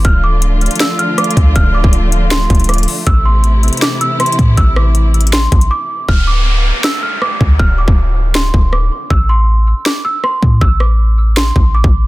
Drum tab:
HH |x-----------------------x-----------x--x--x--x--x-----------x-----------x---x---x---x-----------|x-----------------------x-----------x-----------x-----------x--x--x--x--x--x--x--x--o-----------|x-----------------------x-----------x--x--x--x--x-----------x-----------x---x---x---x-----------|x-----------------------x-----------x---x---x---x-----------x-----x-----------------------------|
SD |------------------------------------------------o-----------------------r-----------------------|------------------------------------------------o-----------------------r-----------------------|------------------------------------------------o-----------------------r-----------------------|------------r-----------------------------------o-----------------------------------------------|
BD |o-----------------------------------------------------------------------------------o-----------|o-----------------o-----------------------------------------o-----------------------------------|o-----------------------------------------------------------------------------------o-----------|o-----------------------------------------------------------o-----------------------------------|

HH |------------------------------------------------------------------------------------------------|------------------------------------------------------------------------------------------------|------------------------------------------------------------------------------------------------|------------------------------------------------------------------------------------------------|
SD |------------------------------------------------o-----------------------r-----------------------|------------------------------------------------o-----------------------r-----------------------|------------------------------------------------o-----------------------r-----------------------|------------r-----------------------------------o-----------------------------------------------|
BD |o-----------------------------------------------------------------------------------o-----------|o-----------------o-----------------------------------------o-----------------------------------|o-----------------------------------------------------------------------------------o-----------|o-----------------------------------------------------------o-----------------o-----------------|